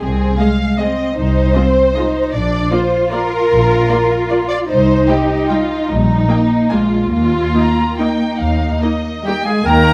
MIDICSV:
0, 0, Header, 1, 9, 480
1, 0, Start_track
1, 0, Key_signature, -3, "major"
1, 0, Tempo, 385852
1, 15, Time_signature, 3, 2, 24, 8
1, 3376, Tempo, 395257
1, 6256, Tempo, 402414
1, 7696, Tempo, 421644
1, 11056, Tempo, 401070
1, 11882, End_track
2, 0, Start_track
2, 0, Title_t, "Violin section"
2, 0, Program_c, 0, 48
2, 500, Note_on_c, 0, 75, 46
2, 599, Note_off_c, 0, 75, 0
2, 971, Note_on_c, 0, 75, 55
2, 1071, Note_off_c, 0, 75, 0
2, 1915, Note_on_c, 0, 75, 52
2, 2014, Note_off_c, 0, 75, 0
2, 2422, Note_on_c, 0, 75, 53
2, 2522, Note_off_c, 0, 75, 0
2, 3380, Note_on_c, 0, 74, 57
2, 3477, Note_off_c, 0, 74, 0
2, 3870, Note_on_c, 0, 74, 59
2, 3967, Note_off_c, 0, 74, 0
2, 4807, Note_on_c, 0, 74, 54
2, 4904, Note_off_c, 0, 74, 0
2, 5307, Note_on_c, 0, 74, 60
2, 5405, Note_off_c, 0, 74, 0
2, 6267, Note_on_c, 0, 79, 55
2, 6363, Note_off_c, 0, 79, 0
2, 6755, Note_on_c, 0, 79, 57
2, 6851, Note_off_c, 0, 79, 0
2, 7697, Note_on_c, 0, 79, 47
2, 7788, Note_off_c, 0, 79, 0
2, 8160, Note_on_c, 0, 80, 55
2, 8251, Note_off_c, 0, 80, 0
2, 9139, Note_on_c, 0, 82, 73
2, 9597, Note_off_c, 0, 82, 0
2, 9618, Note_on_c, 0, 79, 70
2, 10081, Note_off_c, 0, 79, 0
2, 10100, Note_on_c, 0, 77, 66
2, 10567, Note_off_c, 0, 77, 0
2, 10572, Note_on_c, 0, 75, 61
2, 11061, Note_off_c, 0, 75, 0
2, 11073, Note_on_c, 0, 79, 61
2, 11082, Note_off_c, 0, 79, 0
2, 11082, Note_on_c, 0, 79, 80
2, 11303, Note_off_c, 0, 79, 0
2, 11310, Note_on_c, 0, 80, 83
2, 11546, Note_off_c, 0, 80, 0
2, 11552, Note_on_c, 0, 82, 108
2, 11882, Note_off_c, 0, 82, 0
2, 11882, End_track
3, 0, Start_track
3, 0, Title_t, "Flute section"
3, 0, Program_c, 1, 73
3, 11047, Note_on_c, 1, 75, 72
3, 11284, Note_off_c, 1, 75, 0
3, 11293, Note_on_c, 1, 77, 62
3, 11365, Note_off_c, 1, 77, 0
3, 11540, Note_on_c, 1, 79, 93
3, 11882, Note_off_c, 1, 79, 0
3, 11882, End_track
4, 0, Start_track
4, 0, Title_t, "Violin section"
4, 0, Program_c, 2, 48
4, 12, Note_on_c, 2, 68, 80
4, 479, Note_off_c, 2, 68, 0
4, 487, Note_on_c, 2, 77, 83
4, 979, Note_on_c, 2, 75, 78
4, 983, Note_off_c, 2, 77, 0
4, 1446, Note_off_c, 2, 75, 0
4, 1447, Note_on_c, 2, 72, 97
4, 2868, Note_off_c, 2, 72, 0
4, 2902, Note_on_c, 2, 74, 92
4, 3368, Note_off_c, 2, 74, 0
4, 3389, Note_on_c, 2, 72, 81
4, 3865, Note_on_c, 2, 70, 108
4, 3874, Note_off_c, 2, 72, 0
4, 5520, Note_off_c, 2, 70, 0
4, 5544, Note_on_c, 2, 74, 90
4, 5637, Note_off_c, 2, 74, 0
4, 5773, Note_on_c, 2, 72, 99
4, 6241, Note_off_c, 2, 72, 0
4, 6254, Note_on_c, 2, 67, 80
4, 6742, Note_on_c, 2, 65, 81
4, 6751, Note_off_c, 2, 67, 0
4, 7215, Note_off_c, 2, 65, 0
4, 7226, Note_on_c, 2, 63, 90
4, 8181, Note_off_c, 2, 63, 0
4, 8189, Note_on_c, 2, 65, 77
4, 8638, Note_off_c, 2, 65, 0
4, 8652, Note_on_c, 2, 65, 96
4, 9609, Note_off_c, 2, 65, 0
4, 9634, Note_on_c, 2, 63, 70
4, 11310, Note_off_c, 2, 63, 0
4, 11559, Note_on_c, 2, 70, 72
4, 11882, Note_off_c, 2, 70, 0
4, 11882, End_track
5, 0, Start_track
5, 0, Title_t, "Oboe"
5, 0, Program_c, 3, 68
5, 11063, Note_on_c, 3, 67, 64
5, 11293, Note_off_c, 3, 67, 0
5, 11305, Note_on_c, 3, 68, 63
5, 11539, Note_off_c, 3, 68, 0
5, 11547, Note_on_c, 3, 70, 90
5, 11882, Note_off_c, 3, 70, 0
5, 11882, End_track
6, 0, Start_track
6, 0, Title_t, "Viola section"
6, 0, Program_c, 4, 48
6, 492, Note_on_c, 4, 68, 48
6, 499, Note_on_c, 4, 56, 50
6, 591, Note_off_c, 4, 68, 0
6, 598, Note_off_c, 4, 56, 0
6, 994, Note_on_c, 4, 56, 49
6, 996, Note_on_c, 4, 68, 51
6, 1093, Note_off_c, 4, 56, 0
6, 1096, Note_off_c, 4, 68, 0
6, 1933, Note_on_c, 4, 56, 50
6, 1934, Note_on_c, 4, 65, 56
6, 2032, Note_off_c, 4, 56, 0
6, 2033, Note_off_c, 4, 65, 0
6, 2437, Note_on_c, 4, 56, 54
6, 2445, Note_on_c, 4, 65, 49
6, 2537, Note_off_c, 4, 56, 0
6, 2545, Note_off_c, 4, 65, 0
6, 3381, Note_on_c, 4, 65, 58
6, 3383, Note_on_c, 4, 58, 53
6, 3479, Note_off_c, 4, 65, 0
6, 3480, Note_off_c, 4, 58, 0
6, 3866, Note_on_c, 4, 58, 49
6, 3870, Note_on_c, 4, 65, 55
6, 3963, Note_off_c, 4, 58, 0
6, 3967, Note_off_c, 4, 65, 0
6, 4819, Note_on_c, 4, 58, 58
6, 4823, Note_on_c, 4, 65, 53
6, 4916, Note_off_c, 4, 58, 0
6, 4921, Note_off_c, 4, 65, 0
6, 5310, Note_on_c, 4, 65, 55
6, 5318, Note_on_c, 4, 58, 52
6, 5407, Note_off_c, 4, 65, 0
6, 5415, Note_off_c, 4, 58, 0
6, 6251, Note_on_c, 4, 63, 56
6, 6256, Note_on_c, 4, 55, 55
6, 6347, Note_off_c, 4, 63, 0
6, 6351, Note_off_c, 4, 55, 0
6, 6749, Note_on_c, 4, 55, 51
6, 6755, Note_on_c, 4, 63, 52
6, 6845, Note_off_c, 4, 55, 0
6, 6850, Note_off_c, 4, 63, 0
6, 7687, Note_on_c, 4, 63, 54
6, 7688, Note_on_c, 4, 58, 53
6, 7778, Note_off_c, 4, 63, 0
6, 7779, Note_off_c, 4, 58, 0
6, 8161, Note_on_c, 4, 62, 47
6, 8162, Note_on_c, 4, 58, 51
6, 8252, Note_off_c, 4, 62, 0
6, 8253, Note_off_c, 4, 58, 0
6, 9117, Note_on_c, 4, 58, 46
6, 9120, Note_on_c, 4, 63, 47
6, 9208, Note_off_c, 4, 58, 0
6, 9211, Note_off_c, 4, 63, 0
6, 9633, Note_on_c, 4, 63, 46
6, 9636, Note_on_c, 4, 58, 50
6, 9725, Note_off_c, 4, 63, 0
6, 9727, Note_off_c, 4, 58, 0
6, 10575, Note_on_c, 4, 58, 51
6, 10578, Note_on_c, 4, 63, 51
6, 10666, Note_off_c, 4, 58, 0
6, 10669, Note_off_c, 4, 63, 0
6, 11081, Note_on_c, 4, 58, 44
6, 11081, Note_on_c, 4, 63, 45
6, 11089, Note_on_c, 4, 67, 65
6, 11176, Note_off_c, 4, 58, 0
6, 11177, Note_off_c, 4, 63, 0
6, 11183, Note_off_c, 4, 67, 0
6, 11341, Note_on_c, 4, 68, 65
6, 11429, Note_off_c, 4, 68, 0
6, 11564, Note_on_c, 4, 70, 93
6, 11882, Note_off_c, 4, 70, 0
6, 11882, End_track
7, 0, Start_track
7, 0, Title_t, "Cello section"
7, 0, Program_c, 5, 48
7, 11, Note_on_c, 5, 60, 72
7, 479, Note_off_c, 5, 60, 0
7, 496, Note_on_c, 5, 56, 64
7, 988, Note_off_c, 5, 56, 0
7, 997, Note_on_c, 5, 60, 64
7, 1454, Note_off_c, 5, 60, 0
7, 1458, Note_on_c, 5, 63, 78
7, 1918, Note_off_c, 5, 63, 0
7, 1930, Note_on_c, 5, 60, 70
7, 2426, Note_off_c, 5, 60, 0
7, 2426, Note_on_c, 5, 63, 71
7, 2890, Note_off_c, 5, 63, 0
7, 2907, Note_on_c, 5, 62, 78
7, 3380, Note_off_c, 5, 62, 0
7, 3380, Note_on_c, 5, 65, 80
7, 5783, Note_on_c, 5, 63, 81
7, 5784, Note_off_c, 5, 65, 0
7, 7192, Note_off_c, 5, 63, 0
7, 7224, Note_on_c, 5, 55, 69
7, 7696, Note_on_c, 5, 58, 69
7, 7697, Note_off_c, 5, 55, 0
7, 8169, Note_off_c, 5, 58, 0
7, 8175, Note_on_c, 5, 56, 63
7, 8647, Note_off_c, 5, 56, 0
7, 8653, Note_on_c, 5, 58, 65
7, 11261, Note_off_c, 5, 58, 0
7, 11555, Note_on_c, 5, 51, 78
7, 11882, Note_off_c, 5, 51, 0
7, 11882, End_track
8, 0, Start_track
8, 0, Title_t, "French horn section"
8, 0, Program_c, 6, 60
8, 11038, Note_on_c, 6, 55, 62
8, 11154, Note_off_c, 6, 55, 0
8, 11300, Note_on_c, 6, 56, 75
8, 11518, Note_on_c, 6, 58, 98
8, 11536, Note_off_c, 6, 56, 0
8, 11882, Note_off_c, 6, 58, 0
8, 11882, End_track
9, 0, Start_track
9, 0, Title_t, "Double bass section"
9, 0, Program_c, 7, 48
9, 21, Note_on_c, 7, 36, 68
9, 410, Note_off_c, 7, 36, 0
9, 1452, Note_on_c, 7, 36, 69
9, 1842, Note_off_c, 7, 36, 0
9, 2899, Note_on_c, 7, 34, 68
9, 3293, Note_off_c, 7, 34, 0
9, 4342, Note_on_c, 7, 34, 72
9, 4734, Note_off_c, 7, 34, 0
9, 5789, Note_on_c, 7, 36, 73
9, 6176, Note_off_c, 7, 36, 0
9, 7223, Note_on_c, 7, 34, 68
9, 7614, Note_off_c, 7, 34, 0
9, 8173, Note_on_c, 7, 34, 62
9, 8570, Note_off_c, 7, 34, 0
9, 8640, Note_on_c, 7, 39, 67
9, 9043, Note_off_c, 7, 39, 0
9, 10094, Note_on_c, 7, 39, 61
9, 10482, Note_off_c, 7, 39, 0
9, 11551, Note_on_c, 7, 39, 76
9, 11882, Note_off_c, 7, 39, 0
9, 11882, End_track
0, 0, End_of_file